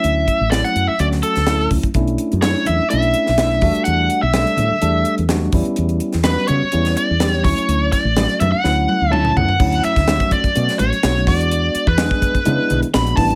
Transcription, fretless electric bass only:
\new Staff \with { instrumentName = "Fretless electric bass" } { \clef bass \time 4/4 \key e \dorian \tempo 4 = 126 d,8 r16 a,,8 r16 fis,16 r16 d,8 r16 d,8. cis,16 r16 | b,,8 r16 fis,8 r16 e,16 r16 b,,8 r16 b,,8. e,16 r16 | e,8 r16 b,,8 r16 a,16 r16 e,8 r16 e,8. e,16 r16 | e,8 r16 e,8 r16 cis16 r16 e,8 r16 e,8. d,16 r16 |
d,8 r16 a,,8 r16 fis,16 r16 d,8 r16 d,8. cis,16 r16 | d,8 r16 d,8 r8. b,16 r16 a,,16 r16 b,,8 e,8~ | e,8 r16 e,8 r8. cis16 r16 b,,16 r16 ais,,8 a,,8 | }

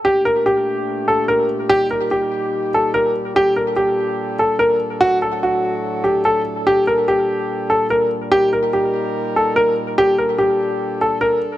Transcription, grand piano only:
\new Staff \with { instrumentName = "Grand piano" } { \time 4/4 \key g \minor \tempo 4 = 145 g'8 bes'8 g'4. a'8 bes'8 r8 | g'8 bes'8 g'4. a'8 bes'8 r8 | g'8 bes'8 g'4. a'8 bes'8 r8 | fis'8 a'8 fis'4. g'8 a'8 r8 |
g'8 bes'8 g'4. a'8 bes'8 r8 | g'8 bes'8 g'4. a'8 bes'8 r8 | g'8 bes'8 g'4. a'8 bes'8 r8 | }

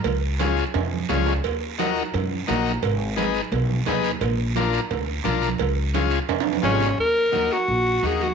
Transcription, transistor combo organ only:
\new Staff \with { instrumentName = "Transistor combo organ" } { \time 4/4 \key ees \minor \tempo 4 = 173 r4 <des' f' aes'>8 r4. <des' f' aes'>8 r8 | r4 <ees' ges' bes'>8 r4. <ees' ges' bes'>8 r8 | r4 <ees' aes' ces''>8 r4. <ees' aes' ces''>8 r8 | r4 <d' f' bes'>8 r4. <d' f' bes'>8 r8 |
r4 <des' f' aes'>8 r4. <des' f' aes'>8 r8 | r4 <bes ees' ges'>8 r4. <bes ees' ges'>8 r8 | }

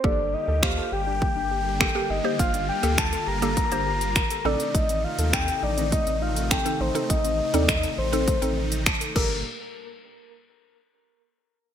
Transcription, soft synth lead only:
\new Staff \with { instrumentName = "Soft synth lead" } { \time 4/4 \key g \minor \tempo 4 = 102 d''8 ees''8 f''8 g''2 ees''8 | f''8 g''8 a''8 bes''2 d''8 | ees''8 f''8 g''8 d''8 ees''8 f''8 g''8 c''8 | ees''8. d''16 ees''16 r16 c''4. r8 bes'8 |
r1 | }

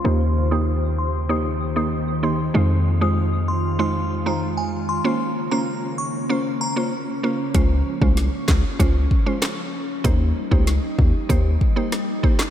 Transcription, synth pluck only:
\new Staff \with { instrumentName = "Synth pluck" } { \time 4/4 \key des \lydian \tempo 4 = 96 <bes ees' g' c''>8. <bes ees' g' c''>16 r4 <bes ees' g' c''>16 r8 <bes ees' g' c''>16 r8 <bes ees' g' c''>16 r16 | <aes ees' f' c''>8. <aes ees' f' c''>16 r4 <aes ees' f' c''>16 r8 <aes ees' f' c''>16 r4 | <bes des' f' c''>8. <bes des' f' c''>16 r4 <bes des' f' c''>16 r8 <bes des' f' c''>16 r8 <bes des' f' c''>16 r16 | <aes des' f' c''>8. <aes des' f' c''>16 r4 <aes des' f' c''>16 r8 <aes des' f' c''>16 r4 |
<bes ees' g' c''>8. <bes ees' g' c''>16 r4 <bes ees' g' c''>16 r8 <bes ees' g' c''>16 r8 <bes ees' g' c''>16 r16 | }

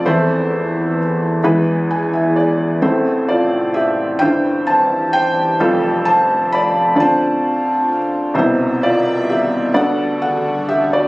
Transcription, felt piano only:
<<
  \new Staff \with { instrumentName = "Felt piano" } { \time 6/8 \key a \minor \tempo 4. = 43 << { <a' e''>4. r8 gis''16 e''16 d''8 | e'8 <f' d''>8 <g' e''>8 <c'' g''>8 <c'' a''>8 <c'' g''>8~ | <c'' g''>8 <c'' a''>8 <d'' b''>8 <c'' a''>4 r8 | <e' c''>8 <f' d''>8 <g' e''>8 <a' fis''>8 <a' fis''>8 <g' e''>16 <fis' d''>16 | } \\ { <a e' c''>4 r8 <gis e' b'>4 r8 | <a c' c''>4 r8 <g e'>4 r8 | <g f' a'>4 r8 <c' f' d''>4 r8 | <b, c'' e''>4 r8 <b fis' d''>4 r8 | } >> }
  \new Staff \with { instrumentName = "Felt piano" } { \clef bass \time 6/8 \key a \minor <e, e>4. <e, e>4. | <a,, a,>4. <g,, g,>4. | <f,, f,>4. <d, d>4. | <c, c>4. <d, d>4. | }
>>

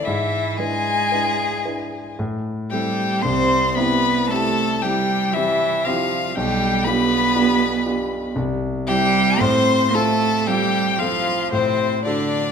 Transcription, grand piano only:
\new Staff \with { instrumentName = "Grand piano" } { \time 3/4 \key c \major \tempo 4 = 57 gis,8 <d' e' b'>8 <d' e' b'>8 <d' e' b'>8 a,8 <c' e' a'>8 | c,8 <c' e' g'>8 <c' e' g'>8 <c' e' g'>8 <c' e' g'>8 <c' e' g'>8 | b,,8 <d' f' g'>8 <d' f' g'>8 <d' f' g'>8 c,8 <c' e' g'>8 | \key f \lydian a,8 <c' f' a'>8 <c' f' a'>8 <c' f' a'>8 a,8 <d' fis' a'>8 | }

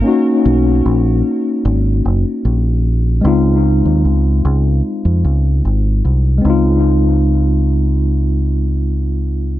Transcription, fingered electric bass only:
\new Staff \with { instrumentName = "Fingered electric bass" } { \clef bass \time 4/4 \key des \major \tempo 4 = 75 r8 ces,8 bes,,8 r8 aes,,8 ges,,16 r16 bes,,4 | des,8. ees,16 des,8 des,8 r16 f,16 des,8 aes,,8 c,8 | des,1 | }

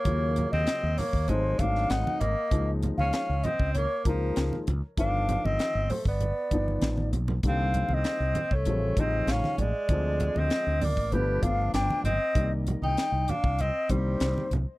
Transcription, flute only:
\new Staff \with { instrumentName = "Flute" } { \time 4/4 \key g \minor \tempo 4 = 98 des''8. ees''8. des''8 c''8 f''8 ges''8 ees''8~ | ees''16 r8 f''8. ees''8 des''8 bes'4 r8 | f''8. ees''8. c''16 d''4.~ d''16 r8 | f''8. ees''4 des''8. ees''8 eis''8 d''8~ |
d''8. ees''8. d''8 b'8 f''8 g''8 ees''8~ | ees''16 r8 g''8. f''8 ees''8 c''4 r8 | }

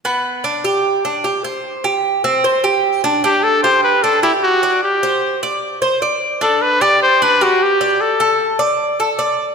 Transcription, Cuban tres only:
\new Staff \with { instrumentName = "Cuban tres" } { \time 4/4 \key g \major \tempo 4 = 151 b4 d'8 g'4 d'8 g'8 c''8~ | c''8 g'4 c'8 c''8 g'4 d'8 | d'4 g'4 d'8 g'4 d''8~ | d''8 c''4 d''4 c''8 d''4 |
d'4 g'4 d'8 g'4 d''8~ | d''8 a'4 d''4 a'8 d''4 | }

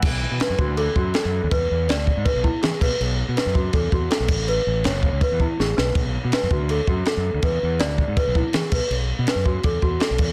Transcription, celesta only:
\new Staff \with { instrumentName = "Celesta" } { \time 4/4 \key b \dorian \tempo 4 = 163 r4 b'8 fis'8 a'8 fis'8 a'4 | b'4 d''4 b'8 e'8 gis'8 b'8 | r4 b'8 fis'8 a'8 fis'8 a'4 | b'4 cis''4 b'8 e'8 gis'8 b'8 |
r4 b'8 fis'8 a'8 fis'8 a'4 | b'4 d''4 b'8 e'8 gis'8 b'8 | r4 b'8 fis'8 a'8 fis'8 a'4 | }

